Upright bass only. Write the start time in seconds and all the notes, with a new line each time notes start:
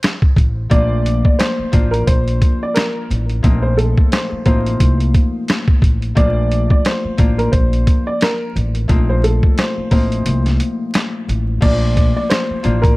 0.37 A1
0.71 A#1
1.59 muted upright bass stroke
1.73 A1
2.08 A#1
3.10 A1
3.44 A#1
4.32 muted upright bass stroke
4.46 A1
4.80 C2
5.82 A1
6.17 A#1
7.05 muted upright bass stroke
7.19 A1
7.53 A#1
8.56 A1
8.90 A#1
9.78 muted upright bass stroke
9.92 A1
10.26 C2
11.29 A1
11.62 A#1
12.50 muted upright bass stroke
12.65 A1